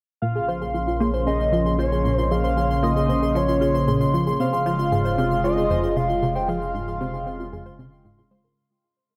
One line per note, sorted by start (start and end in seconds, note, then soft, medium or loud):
0.22 4.37 A#1 medium
0.22 0.40 A#2 medium
0.22 8.53 C#3 medium
0.22 4.36 A#3 medium
0.22 4.36 C#4 medium
0.22 0.28 F4 medium
0.22 0.96 F5 loud
0.22 8.58 C6 medium
0.35 0.41 G#4 medium
0.48 0.66 F3 medium
0.48 0.61 C5 loud
0.61 0.71 G#4 medium
0.74 0.92 F3 medium
0.87 0.93 F4 medium
1.00 1.11 A#3 medium
1.00 1.06 G#4 medium
1.14 1.26 C5 medium
1.26 1.51 C#3 medium
1.26 1.37 G#4 medium
1.26 1.75 D#5 loud
1.52 1.77 F3 medium
1.52 1.59 F4 medium
1.66 1.72 G#4 medium
1.79 1.97 F4 medium
1.79 1.91 C5 loud
1.79 2.14 C#5 medium
1.92 2.02 G#4 medium
2.05 2.23 A#2 medium
2.14 2.24 F4 medium
2.14 2.33 C5 medium
2.31 2.49 F3 medium
2.31 2.37 G#4 medium
2.31 2.83 F5 loud
2.44 2.56 C5 medium
2.57 2.75 F3 medium
2.57 2.67 G#4 medium
2.83 2.94 A#3 loud
2.83 2.89 F4 medium
2.83 3.38 D#5 loud
2.96 3.02 G#4 medium
3.09 3.34 C#3 medium
3.09 3.21 C5 loud
3.22 3.32 G#4 medium
3.35 3.60 F3 loud
3.35 4.14 C#5 medium
3.48 3.54 F4 medium
3.61 3.79 F4 medium
3.61 3.67 G#4 medium
3.74 3.87 C5 loud
3.87 4.05 A#2 medium
3.87 3.97 G#4 medium
4.13 4.31 F3 medium
4.13 4.20 F4 medium
4.27 4.33 G#4 medium
4.40 8.54 F1 medium
4.40 4.58 C3 medium
4.40 8.53 G#3 medium
4.40 8.53 F4 medium
4.40 4.52 C5 loud
4.40 5.40 F5 loud
4.53 4.63 G#4 medium
4.66 4.76 F3 loud
4.79 4.85 F4 medium
4.92 5.16 G#2 medium
4.92 4.98 G#4 medium
5.05 5.17 C5 loud
5.18 5.43 C3 loud
5.18 5.28 G#4 medium
5.44 5.62 C4 medium
5.44 5.50 F4 medium
5.44 5.98 D#5 medium
5.57 5.63 G#4 medium
5.70 5.88 F2 medium
5.70 5.83 C5 loud
5.83 5.93 G#4 medium
5.96 6.14 C3 medium
5.96 6.37 F5 medium
6.09 6.15 F4 medium
6.22 6.40 C3 medium
6.22 6.28 G#4 medium
6.35 6.48 C5 loud
6.35 6.48 G5 loud
6.48 6.59 F3 loud
6.48 6.58 G#4 medium
6.48 8.01 F5 loud
6.74 6.99 G#2 medium
6.74 6.80 F4 medium
6.88 6.93 G#4 medium
7.01 7.25 C3 loud
7.01 7.13 C5 loud
7.13 7.23 G#4 medium
7.26 7.44 C4 medium
7.40 7.46 F4 medium
7.52 7.70 F2 medium
7.52 7.59 G#4 medium
7.66 7.78 C5 medium
7.79 7.89 C3 loud
7.79 7.91 C4 medium
8.05 8.23 G#2 medium
8.05 8.11 F4 medium
8.18 8.28 F4 medium
8.31 8.42 G#3 medium
8.31 8.41 C5 loud
8.44 8.56 A#4 medium